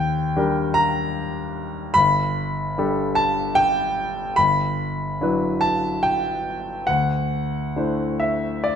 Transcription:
0.00 0.34 D#2 medium
0.00 0.75 G5 loud
0.37 1.92 G3 soft
0.37 1.92 D4 soft
0.37 1.92 G4 soft
0.37 1.92 A#4 soft
0.74 1.95 A#5 loud
1.94 2.75 G1 medium
1.94 3.17 B5 loud
2.78 4.34 G3 soft
2.78 4.34 D4 soft
2.78 4.35 G4 soft
2.78 4.35 A4 medium
3.15 3.56 A5 medium
3.55 4.37 G5 loud
4.36 5.18 G1 medium
4.36 5.61 B5 loud
5.21 6.84 F#3 soft
5.21 6.84 D4 soft
5.21 6.84 E4 soft
5.21 6.85 B4 soft
5.61 6.03 A5 medium
6.03 6.87 G5 medium
6.87 7.73 D2 medium
6.87 8.18 F#5 medium
7.76 8.76 A3 soft
7.76 8.76 D4 soft
7.76 8.76 E4 soft
7.76 8.76 C5 soft
8.20 8.65 E5 medium
8.64 8.76 D5 medium

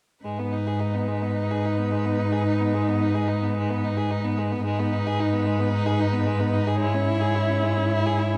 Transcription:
0.25 4.61 G#2 soft
0.25 0.40 G#3 soft
0.25 4.61 D#4 soft
0.25 4.62 B4 soft
0.39 0.54 B3 soft
0.53 0.68 D#4 soft
0.67 0.82 G#4 soft
0.80 0.96 D#4 soft
0.94 1.10 B3 soft
1.08 1.24 G#3 soft
1.22 1.36 B3 soft
1.36 1.53 D#4 soft
1.51 1.67 G#4 soft
1.65 1.80 D#4 soft
1.78 1.94 B3 soft
1.92 2.07 G#3 soft
2.06 2.20 B3 soft
2.19 2.34 D#4 soft
2.32 2.46 G#4 soft
2.46 2.62 D#4 soft
2.60 2.76 B3 soft
2.74 2.90 G#3 soft
2.88 3.03 B3 soft
3.02 3.16 D#4 soft
3.15 3.30 G#4 soft
3.29 3.44 D#4 soft
3.43 3.56 B3 soft
3.57 3.72 G#3 soft
3.70 3.86 B3 soft
3.84 3.99 D#4 soft
3.97 4.12 G#4 soft
4.11 4.26 D#4 soft
4.25 4.40 B3 soft
4.38 4.54 G#3 soft
4.52 4.65 B3 soft
4.65 8.38 G#2 soft
4.65 4.81 G#3 soft
4.65 6.83 D#4 soft
4.65 6.77 B4 soft
4.79 4.94 B3 soft
4.93 5.08 D#4 soft
5.07 5.21 G#4 soft
5.20 5.35 D#4 soft
5.34 5.48 B3 soft
5.46 5.61 G#3 soft
5.60 5.72 B3 soft
5.73 5.88 D#4 medium
5.86 6.01 G#4 soft
6.00 6.15 D#4 soft
6.13 6.28 B3 soft
6.27 6.41 G#3 soft
6.40 6.55 B3 soft
6.53 6.69 D#4 soft
6.67 6.80 G#4 soft
6.80 6.96 G#3 soft
6.80 8.38 E4 soft
6.80 8.38 C#5 soft
6.94 7.09 C#4 soft
7.08 7.23 E4 soft
7.21 7.37 G#4 soft
7.35 7.50 E4 soft
7.49 7.65 C#4 soft
7.63 7.79 G#3 soft
7.77 7.91 C#4 soft
7.92 8.07 E4 soft
8.06 8.21 G#4 soft
8.19 8.35 E4 soft
8.34 8.38 C#4 soft

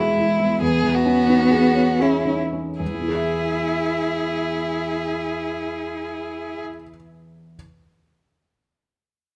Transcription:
0.00 0.57 E2 soft
0.00 0.64 B2 soft
0.00 0.60 G#3 medium
0.00 0.40 B3 soft
0.00 0.18 E4 soft
0.00 0.61 E4 medium
0.00 0.63 G#4 soft
0.00 0.64 B4 soft
0.18 0.52 E4 soft
0.40 0.61 B3 soft
0.60 2.76 E2 soft
0.60 2.02 B3 medium
0.60 0.96 G#4 medium
0.83 1.19 E3 soft
0.95 2.04 F#4 medium
1.05 1.42 C#4 soft
1.28 1.66 D#4 soft
1.51 1.90 G#4 soft
1.74 2.15 C#5 soft
1.99 2.40 C#4 medium
1.99 2.41 E4 soft
1.99 2.42 G#4 soft
2.25 2.69 D#4 soft
2.53 2.80 C#4 soft
2.80 6.60 E2 soft
2.80 6.61 E4 medium
2.80 6.61 G#4 soft
2.87 6.67 E3 soft
2.94 6.75 B3 soft
3.01 6.81 E4 soft
3.08 6.88 G#4 soft
3.15 6.95 E5 soft

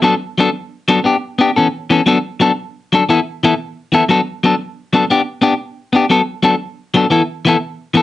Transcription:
0.02 0.13 F#3 medium
0.02 0.13 B3 medium
0.02 0.14 D4 medium
0.02 0.14 A4 medium
0.38 0.48 F#3 medium
0.38 0.49 B3 medium
0.38 0.49 D4 medium
0.38 0.49 A4 medium
0.88 0.99 F#3 medium
0.88 0.99 B3 medium
0.88 0.99 D4 medium
0.88 0.99 A4 medium
1.04 1.15 B3 medium
1.04 1.15 D4 medium
1.04 1.16 G4 medium
1.39 1.49 B3 medium
1.39 1.50 D4 medium
1.39 1.50 G4 medium
1.56 1.67 E3 soft
1.56 1.67 B3 medium
1.56 1.67 C#4 medium
1.56 1.66 A4 medium
1.90 2.00 E3 medium
1.90 2.00 B3 medium
1.90 2.01 C#4 medium
1.90 2.01 A4 medium
2.06 2.17 F#3 medium
2.06 2.17 B3 medium
2.06 2.17 D4 medium
2.06 2.18 A4 medium
2.40 2.50 F#3 medium
2.40 2.51 B3 medium
2.40 2.51 D4 medium
2.40 2.52 A4 medium
2.93 3.02 F#3 medium
2.93 3.03 D4 medium
2.93 3.03 A4 medium
2.93 muted clean electric guitar stroke medium
3.09 3.19 E3 medium
3.09 3.19 B3 medium
3.09 3.19 E4 medium
3.09 3.19 A4 medium
3.44 3.53 E3 medium
3.44 3.53 B3 medium
3.44 3.53 E4 medium
3.44 3.54 A4 medium
3.92 4.02 E3 medium
3.92 4.03 B3 medium
3.92 4.04 E4 medium
3.92 4.04 A4 medium
4.09 4.19 F#3 medium
4.09 4.20 B3 medium
4.09 4.20 D4 medium
4.09 4.20 A4 medium
4.44 4.53 F#3 medium
4.44 4.54 B3 medium
4.44 4.55 D4 medium
4.44 4.54 A4 medium
4.93 5.03 F#3 medium
4.93 5.04 B3 medium
4.93 5.04 D4 medium
4.93 5.05 A4 medium
5.10 5.20 B3 medium
5.10 5.21 D4 medium
5.10 5.21 G4 medium
5.42 5.53 B3 medium
5.42 5.53 D4 medium
5.42 5.54 G4 medium
5.93 6.04 B3 medium
5.93 6.05 D4 medium
5.93 6.05 G4 medium
6.10 6.21 F#3 medium
6.10 6.21 B3 medium
6.10 6.21 A4 loud
6.10 muted clean electric guitar stroke medium
6.43 6.54 F#3 medium
6.43 6.54 B3 medium
6.43 6.54 D4 medium
6.43 6.55 A4 medium
6.94 7.05 F#3 medium
6.94 7.05 B3 medium
6.94 7.05 D4 medium
6.94 7.06 A4 medium
7.10 7.21 E3 medium
7.10 7.21 B3 medium
7.10 7.22 E4 medium
7.10 7.22 A4 medium
7.45 7.55 E3 medium
7.45 7.56 B3 medium
7.45 7.56 E4 medium
7.45 7.57 A4 medium
7.94 8.02 E3 medium
7.94 8.02 B3 medium
7.94 8.02 A4 medium
7.94 muted clean electric guitar stroke medium

